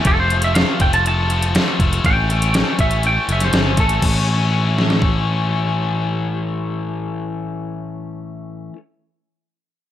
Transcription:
0.05 picked electric bass F1, overdriven electric guitar F3 A3 C4, clean electric guitar A4, kick, closed hi-hat
0.20 clean electric guitar C5
0.30 overdriven electric guitar F3 A3 C4, closed hi-hat
0.42 clean electric guitar E5, closed hi-hat
0.55 overdriven electric guitar F3 A3 C4, clean electric guitar F5, snare, closed hi-hat
0.80 picked electric bass F1, overdriven electric guitar F3 A3 C4, clean electric guitar G5, kick, closed hi-hat
0.93 clean electric guitar A5, closed hi-hat
1.06 overdriven electric guitar F3 A3 C4, clean electric guitar A5, closed hi-hat
1.30 overdriven electric guitar F3 A3 C4, closed hi-hat
1.43 closed hi-hat
1.55 overdriven electric guitar F3 A3 C4, snare, closed hi-hat
1.79 picked electric bass F1, overdriven electric guitar F3 A3 C4, kick, closed hi-hat
1.93 closed hi-hat
2.04 picked electric bass A1, overdriven electric guitar E3 A3 C#4, clean electric guitar G5, kick, closed hi-hat
2.30 overdriven electric guitar E3 A3 C#4, closed hi-hat
2.42 closed hi-hat
2.54 overdriven electric guitar E3 A3 C#4, snare, closed hi-hat
2.79 picked electric bass A1, overdriven electric guitar E3 A3 C#4, clean electric guitar E5, kick, closed hi-hat
2.91 closed hi-hat
3.03 overdriven electric guitar E3 A3 C#4, clean electric guitar G5, closed hi-hat
3.28 picked electric bass F#1, overdriven electric guitar E3 A3 C#4, closed hi-hat
3.32 clean electric guitar E5
3.40 clean electric guitar C5, snare, closed hi-hat
3.53 picked electric bass G1, overdriven electric guitar E3 A3 C#4, snare, closed hi-hat
3.77 picked electric bass A1, overdriven electric guitar E3 A3 C#4, clean electric guitar A4, kick, closed hi-hat
3.89 closed hi-hat
4.02 picked electric bass A1, overdriven electric guitar E3 A3, kick, crash
4.07 overdriven electric guitar C#4
4.78 snare
4.90 snare
5.02 kick

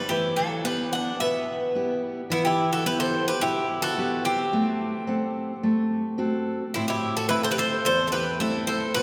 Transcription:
0.09 steel-string acoustic guitar E3, bouzouki E3 G4
0.36 bouzouki F#3 A4
0.65 bouzouki G3 B4, steel-string acoustic guitar B3 E4 G4
0.93 bouzouki D4 F#5
1.20 steel-string acoustic guitar B2, bouzouki B3 E5
1.75 steel-string acoustic guitar B3 E4 G4
2.30 steel-string acoustic guitar E3, bouzouki B3 E4
2.45 bouzouki E4 G4
2.73 bouzouki F#4 A4
2.86 steel-string acoustic guitar B3 E4 G4, bouzouki G4 B4
3.00 bouzouki A4 C5
3.28 bouzouki G4 B4
3.41 steel-string acoustic guitar B2, bouzouki E4 G4
3.82 bouzouki F#4 A4
3.98 steel-string acoustic guitar B3 E4 G4
4.25 bouzouki C4 G4
4.53 steel-string acoustic guitar A3
5.07 steel-string acoustic guitar C4 A4 F#5
5.63 steel-string acoustic guitar A3
6.18 steel-string acoustic guitar C4 F#4 A4
6.74 steel-string acoustic guitar A2, bouzouki C4 E4
6.88 bouzouki E4 G4
7.17 bouzouki F#4 A4
7.29 steel-string acoustic guitar A3 C4 E4, bouzouki E4 B4
7.43 bouzouki A4 C5
7.51 bouzouki G4 B4
7.58 bouzouki A4 C5
7.85 steel-string acoustic guitar E2, bouzouki A4 C5
8.07 bouzouki A4 C5
8.12 bouzouki G4 B4
8.40 steel-string acoustic guitar A3 C4 E4, bouzouki E4 A4
8.67 bouzouki A4 C5
8.94 steel-string acoustic guitar B2, bouzouki F#4 B4

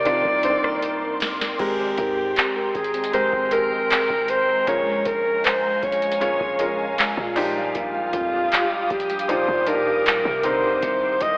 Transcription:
Already playing: 808-style bass C3, felt piano D#3 C4 D4 A#4, nylon-string guitar D#3 A#3 D4, ambient pad A#4 D5 C6 D6, alto saxophone D5
0.05 nylon-string guitar C3, felt piano D#3 C4 D4 F4, cross-stick, closed hi-hat
0.25 808-style bass C2, nylon-string guitar D#3, kick
0.43 felt piano D3 C4 D4 C5, nylon-string guitar D4, closed hi-hat
0.50 felt piano D#3
0.63 nylon-string guitar A#3, cross-stick
0.82 nylon-string guitar D#3, closed hi-hat
1.02 nylon-string guitar D4
1.20 nylon-string guitar A#3, snare, open hi-hat
1.40 nylon-string guitar D#3, snare
1.59 808-style bass G#1, felt piano G#3 C4 G4 A#4, ambient pad G#3 G5 A#5, nylon-string guitar G#3, alto saxophone G4, kick, crash
1.79 nylon-string guitar C4
1.98 808-style bass G#2, nylon-string guitar A#4, kick, closed hi-hat
2.17 nylon-string guitar G4
2.36 nylon-string guitar C4, clap, closed hi-hat
2.56 nylon-string guitar A#4
2.75 808-style bass G#1, alto saxophone G#4, kick, closed hi-hat
2.84 closed hi-hat
2.94 nylon-string guitar C4, closed hi-hat
3.04 closed hi-hat
3.13 felt piano G#3 C4 G4 A#4, nylon-string guitar G#3, alto saxophone C5, closed hi-hat
3.32 808-style bass G#1, nylon-string guitar C4, kick
3.51 felt piano G#3 C4 G4 A#4, nylon-string guitar A#4, alto saxophone A#4, closed hi-hat
3.71 nylon-string guitar G4
3.90 nylon-string guitar C4, clap, closed hi-hat
4.09 808-style bass G#1, nylon-string guitar A#4, kick
4.28 nylon-string guitar G4, alto saxophone C5, closed hi-hat
4.48 nylon-string guitar C4
4.67 808-style bass A#1, nylon-string guitar A#2, felt piano G#3 C#4 F4 A#4, alto saxophone C#5, ambient pad F5 G#5, kick, closed hi-hat
4.86 nylon-string guitar G#3
5.05 808-style bass A#1, nylon-string guitar F4, alto saxophone A#4, kick, closed hi-hat
5.25 nylon-string guitar C#4
5.44 nylon-string guitar G#3, alto saxophone C5, clap, closed hi-hat
5.63 nylon-string guitar F4
5.83 808-style bass A#1, nylon-string guitar C#4, alto saxophone C#5, kick, closed hi-hat
5.92 closed hi-hat
6.02 nylon-string guitar G#3, closed hi-hat
6.12 closed hi-hat
6.20 nylon-string guitar A#2, felt piano G#3 C#4 F4 C#5, closed hi-hat
6.40 808-style bass A#1, nylon-string guitar G#3, kick
6.59 felt piano G#3 C#4 F4 A#4, nylon-string guitar F4, closed hi-hat
6.79 nylon-string guitar C#4
6.98 nylon-string guitar G#3, clap, closed hi-hat
7.17 808-style bass A#2, nylon-string guitar F4, kick
7.36 nylon-string guitar A#2, felt piano F3 D4 D#4 G4, ambient pad G4 D6 D#6, open hi-hat
7.56 nylon-string guitar G3
7.75 808-style bass A#1, nylon-string guitar A#2, alto saxophone F4, kick, closed hi-hat
7.94 nylon-string guitar G3
8.13 808-style bass F2, nylon-string guitar F4, kick, closed hi-hat
8.33 nylon-string guitar D4
8.52 nylon-string guitar G3, clap, closed hi-hat
8.71 nylon-string guitar F4
8.90 808-style bass A#1, nylon-string guitar D4, alto saxophone G4, kick, closed hi-hat
9.00 closed hi-hat
9.10 nylon-string guitar G3, closed hi-hat
9.19 closed hi-hat
9.28 nylon-string guitar A#2, felt piano F3 D4 D#4 F4, alto saxophone C5, closed hi-hat
9.48 808-style bass A#2, nylon-string guitar G3, kick
9.67 felt piano F3 D4 D#4 F4, nylon-string guitar F4, alto saxophone A#4, closed hi-hat
9.75 felt piano G4
9.86 nylon-string guitar D4
10.05 nylon-string guitar G3, clap, closed hi-hat
10.25 808-style bass C3, nylon-string guitar F4, kick
10.43 nylon-string guitar C3, felt piano D3 D#3 C4 A#4, ambient pad A#4 C5 C6, alto saxophone C5, closed hi-hat
10.63 808-style bass G2, nylon-string guitar D#3
10.82 808-style bass C2, nylon-string guitar C3, kick, closed hi-hat
11.02 nylon-string guitar D#3
11.21 808-style bass C2, alto saxophone D#5, kick, closed hi-hat

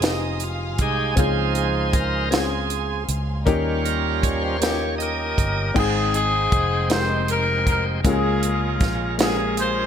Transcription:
Already playing: fingered electric bass F1, upright piano D#4 F4 G#4, string section F5 G#5 C6 D#6
0.00 upright piano C4 D#4 F4 G4, snare, closed hi-hat
0.06 tonewheel organ D#4, upright piano G#4
0.40 tonewheel organ F4, closed hi-hat
0.79 fingered electric bass C2, tonewheel organ G#3 G4 G#4, kick, closed hi-hat
0.83 tonewheel organ D#4
1.16 fingered electric bass C#2, upright piano C#3 C4 C#4 F4 G#4, tonewheel organ F3 D#4 C5, string section C6, kick, closed hi-hat
1.55 tonewheel organ G#4, closed hi-hat
1.93 tonewheel organ A#4, kick, closed hi-hat
2.26 tonewheel organ A#4
2.31 upright piano C4 C#4 F4 G#4, tonewheel organ G#4, snare, closed hi-hat
2.70 closed hi-hat
3.09 fingered electric bass C#2, closed hi-hat
3.45 fingered electric bass D#2, upright piano D#3 A#3 C#4 D#4 G4, tonewheel organ G3 C#4 F4, string section D#5 G5 A#5, kick, closed hi-hat
3.85 tonewheel organ A#4, closed hi-hat
4.23 tonewheel organ C#5, kick, closed hi-hat
4.41 tonewheel organ C5
4.58 upright piano A#3 C#4 D#4, tonewheel organ C#5, closed hi-hat
4.62 upright piano F4, horn section G4, snare
4.98 horn section C#4 G4 A#4, tonewheel organ D#5, closed hi-hat
5.38 fingered electric bass G1, kick, closed hi-hat
5.74 fingered electric bass G#1, upright piano G#2 G#3 C4 D#4 G#4 G5, tonewheel organ G#3 C4 D#4 C5 G5, horn section C4 D#4 G#4, kick, crash
6.14 horn section C4 D#4 G#4, closed hi-hat
6.52 fingered electric bass F1, kick, closed hi-hat
6.89 upright piano G#3 C4 D#4 G4 A#4, horn section C5, snare, closed hi-hat
7.28 horn section A#4, closed hi-hat
7.67 horn section A#4, kick, closed hi-hat
8.03 fingered electric bass C#2, upright piano C#3 G#3 A#3 C#4 F4 G4, tonewheel organ G#3 A#3 C#4 F4 A#4, horn section F4, kick, closed hi-hat
8.08 horn section G#4
8.13 upright piano G#4
8.43 closed hi-hat
8.81 fingered electric bass A#1, kick, snare, closed hi-hat
9.18 upright piano G#3 A#3 C#4 F4 G4, snare, closed hi-hat
9.22 horn section G#4, upright piano G#4
9.57 horn section F4 G#4 C5, closed hi-hat

